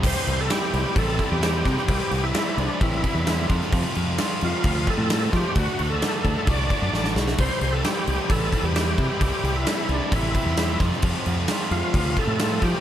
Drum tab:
CC |x-x-x-x-x-x-x-x-|x-x-x-x-x-x-x-x-|x-x-x-x-x-x-x-x-|x-x-x-x-x-x-----|
SD |----o-------o-oo|----o-------o--o|----o-------o-o-|----o-------oooo|
BD |o-------o-o---o-|o-------o-o---o-|o-------o-o---o-|o-----o-o-o-----|

CC |x-x-x-x-x-x-x-x-|x-x-x-x-x-x-x-x-|x-x-x-x-x-x-x-x-|
SD |----o-------o---|----o-------o-oo|----o-------o-o-|
BD |o-------o-o---o-|o-------o-o---o-|o-------o-o---o-|